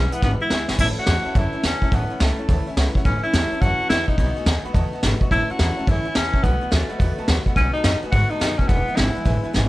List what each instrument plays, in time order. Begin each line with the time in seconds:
Already playing: steel-string acoustic guitar E3 G#3 B3 E4, tenor saxophone C#4
0.12 steel-string acoustic guitar E3 G#3 B3 E4, tenor saxophone B3, upright piano B4 E5 B5, muted upright bass stroke, closed hi-hat
0.22 upright bass G#1, steel-string acoustic guitar E2 B2 E3 G#3 B3 E4, tenor saxophone B3, upright piano B4 E5 B5, kick, snare
0.40 steel-string acoustic guitar E3 G#3 B3 E4, tenor saxophone E4, upright piano B4 E5 B5, muted upright bass stroke
0.50 upright bass D2, steel-string acoustic guitar E3 G#3 B3 E4, upright piano B4 E5 G#5, snare
0.69 upright bass G#1, steel-string acoustic guitar E3 G#3 B3 E4, upright piano B4 E5 G#5, snare
0.78 upright bass A1, steel-string acoustic guitar A2 E3 A3 C#4 E4, tenor saxophone E4, upright piano C#5 E5 A5, kick, crash
0.96 steel-string acoustic guitar A3 C#4 E4, tenor saxophone F#4, upright piano C#5 E5 F#5, muted upright bass stroke
1.07 upright bass E2, steel-string acoustic guitar E3 A3 C#4 E4, upright piano C#5 E5 A5, snare, open hi-hat
1.24 steel-string acoustic guitar A3 C#4 E4, upright piano C#5 E5 A5, muted upright bass stroke
1.35 upright bass F#2, steel-string acoustic guitar A2 E3 A3 C#4 E4, tenor saxophone E4, upright piano C#5 E5 A5, kick, open hi-hat
1.52 steel-string acoustic guitar A3 C#4 E4, upright piano C#5 E5 A5, muted upright bass stroke
1.63 upright bass E2, steel-string acoustic guitar E3 A3 C#4 E4, tenor saxophone C#4, upright piano C#5 E5 A5, snare, open hi-hat
1.82 upright bass D2, steel-string acoustic guitar A3 C#4 E4, upright piano C#5 E5 A5, kick
1.91 upright bass A1, steel-string acoustic guitar A2 E3 A3 C#4 E4, tenor saxophone B3, upright piano C#5 E5 A5, kick, open hi-hat
2.10 steel-string acoustic guitar A3 C#4 E4, upright piano C#5 E5 F#5, muted upright bass stroke
2.20 upright bass C#2, steel-string acoustic guitar E3 A3 C#4 E4, tenor saxophone A3, upright piano C#5 E5 A5, snare, open hi-hat
2.39 steel-string acoustic guitar A3 C#4 E4, upright piano C#5 E5 A5, muted upright bass stroke
2.49 upright bass D2, steel-string acoustic guitar A2 E3 A3 C#4 E4, upright piano C#5 E5 A5, kick, open hi-hat
2.66 steel-string acoustic guitar A3 C#4 E4, upright piano C#5 E5 G#5, muted upright bass stroke
2.76 upright bass C#2, steel-string acoustic guitar E3 A3 C#4 E4, upright piano C#5 E5 F#5, snare, open hi-hat
2.95 steel-string acoustic guitar A3 C#4 E4, upright piano C#5 E5 F#5, muted upright bass stroke, kick
3.05 upright bass A1, steel-string acoustic guitar A2 E3 A3 C#4 E4, tenor saxophone C#4, upright piano C#5 E5 B5, kick, open hi-hat
3.23 steel-string acoustic guitar A3 C#4 E4, tenor saxophone E4, upright piano C#5 E5 G#5, muted upright bass stroke
3.33 upright bass E2, steel-string acoustic guitar E3 A3 C#4 E4, upright piano C#5 A5, snare, open hi-hat
3.51 steel-string acoustic guitar A3 C#4 E4, upright piano C#5 E5 A5, muted upright bass stroke
3.61 upright bass F#2, steel-string acoustic guitar A2 E3 A3 C#4 E4, tenor saxophone F#4, upright piano C#5 E5 A5, kick, open hi-hat
3.79 steel-string acoustic guitar A3 C#4 E4, upright piano C#5 E5 A5, muted upright bass stroke
3.89 upright bass E2, steel-string acoustic guitar E3 A3 C#4 E4, tenor saxophone E4, upright piano C#5 E5, snare, open hi-hat
4.07 upright bass A#1, steel-string acoustic guitar A3 C#4 E4, tenor saxophone D#4, upright piano C#5 E5 B5, kick
4.17 upright bass B1, steel-string acoustic guitar B2 D#3 A3 B3 F#4, upright piano D#5 F#5 B5, kick, open hi-hat
4.36 steel-string acoustic guitar A3 B3 F#4, upright piano D#5 F#5 G#5, muted upright bass stroke
4.46 upright bass D#2, steel-string acoustic guitar D#3 A3 B3 F#4, upright piano D#5 F#5 G#5, snare, open hi-hat
4.64 steel-string acoustic guitar B3 F#4, upright piano D#5 F#5 B5, muted upright bass stroke
4.68 steel-string acoustic guitar A3
4.73 upright bass E2, steel-string acoustic guitar B2 D#3 A3 B3 F#4, upright piano D#5 F#5 A5, kick, open hi-hat
4.92 steel-string acoustic guitar A3 B3 F#4, upright piano D#5 F#5 A5, muted upright bass stroke
5.02 upright bass G#1, steel-string acoustic guitar D#3 A3 B3, upright piano D#5 F#5 B5, snare, open hi-hat
5.06 steel-string acoustic guitar F#4
5.19 steel-string acoustic guitar B3 F#4, upright piano D#5 F#5 C#6, muted upright bass stroke, kick
5.25 steel-string acoustic guitar A3
5.30 upright bass A1, steel-string acoustic guitar A2 E3 A3 C#4 E4, tenor saxophone E4, upright piano C#5 E5 A5, kick, open hi-hat
5.48 steel-string acoustic guitar C#4 E4, tenor saxophone F#4, upright piano C#5 E5 A5, muted upright bass stroke
5.52 steel-string acoustic guitar A3
5.58 upright bass E2, steel-string acoustic guitar E3 A3 C#4, upright piano C#5 E5 A5, snare, open hi-hat
5.63 steel-string acoustic guitar E4
5.77 steel-string acoustic guitar A3 C#4 E4, upright piano C#5 E5 A5, muted upright bass stroke
5.87 upright bass F#2, steel-string acoustic guitar A2 E3 A3 C#4 E4, tenor saxophone E4, upright piano C#5 E5 G#5, kick, open hi-hat
6.04 steel-string acoustic guitar A3 C#4 E4, upright piano C#5 E5 G#5, muted upright bass stroke
6.15 upright bass E2, steel-string acoustic guitar E3 A3 C#4 E4, tenor saxophone C#4, upright piano C#5 E5 A5, snare
6.33 upright bass C#2, steel-string acoustic guitar A3 C#4 E4, upright piano C#5 E5 A5, kick
6.43 upright bass B1, steel-string acoustic guitar B2 D#3 A3 B3 F#4, tenor saxophone B3, upright piano B4 D#5 F#5, kick, open hi-hat
6.61 steel-string acoustic guitar A3 B3 F#4, upright piano B4 D#5 F#5, muted upright bass stroke
6.71 upright bass D#2, steel-string acoustic guitar D#3 A3 B3 F#4, tenor saxophone A3, upright piano B4 D#5 G#5, snare, open hi-hat
6.89 steel-string acoustic guitar A3 B3 F#4, upright piano B4 D#5 F#5, muted upright bass stroke
6.99 upright bass E2, steel-string acoustic guitar B2 D#3 A3 B3 F#4, upright piano B4 D#5 F#5, kick, open hi-hat
7.18 steel-string acoustic guitar A3 B3 F#4, upright piano B4 D#5 A5, muted upright bass stroke
7.27 upright bass D#2, steel-string acoustic guitar D#3 A3 B3 F#4, upright piano B4 D#5 F#5, snare
7.46 steel-string acoustic guitar A3 B3 F#4, upright piano B4 D#5 F#5, muted upright bass stroke, kick
7.56 upright bass B1, steel-string acoustic guitar B2 D#3 A3 B3 F#4, tenor saxophone C#4, upright piano B4 D#5 F#5, kick, open hi-hat
7.73 steel-string acoustic guitar B3 F#4, tenor saxophone D#4, upright piano B4 D#5 A5, muted upright bass stroke
7.77 steel-string acoustic guitar A3
7.84 upright bass F#2, steel-string acoustic guitar D#3 A3 B3 F#4, upright piano B4 D#5 A5, snare, open hi-hat
8.03 steel-string acoustic guitar A3 B3 F#4, upright piano B4 D#5 G#5, muted upright bass stroke
8.11 upright bass G#2, steel-string acoustic guitar B2 D#3 A3 B3 F#4, tenor saxophone F#4, upright piano B4 D#5 F#5, kick, open hi-hat
8.30 steel-string acoustic guitar A3 B3 F#4, tenor saxophone D#4, upright piano B4 D#5 A5, muted upright bass stroke
8.40 upright bass F#2, steel-string acoustic guitar D#3 A3 B3 F#4, upright piano B4 D#5 G#5, snare, open hi-hat
8.58 upright bass D#2, steel-string acoustic guitar A3 B3 F#4, tenor saxophone C#4, upright piano B4 D#5 A5, kick
8.68 upright bass E1, steel-string acoustic guitar E2 B2 E3 G#3 B3 E4, tenor saxophone B3, upright piano B4 E5 G#5, kick, open hi-hat
8.86 steel-string acoustic guitar G#3 B3 E4, upright piano B4 E5 F#5, muted upright bass stroke
8.90 steel-string acoustic guitar E3
8.96 upright bass G#1, steel-string acoustic guitar E3 G#3 B3, tenor saxophone E4, upright piano B4 G#5, snare, open hi-hat
9.00 steel-string acoustic guitar E4
9.15 steel-string acoustic guitar E3 G#3 B3 E4, upright piano B4 E5 G#5, muted upright bass stroke
9.25 upright bass A1, steel-string acoustic guitar E2 B2 E3 G#3 B3 E4, upright piano B4 E5 G#5, kick, open hi-hat
9.43 steel-string acoustic guitar E3 G#3 B3 E4, upright piano B4 E5 G#5, muted upright bass stroke
9.53 upright bass G#1, steel-string acoustic guitar E3 G#3 B3 E4, upright piano B4 E5 G#5, snare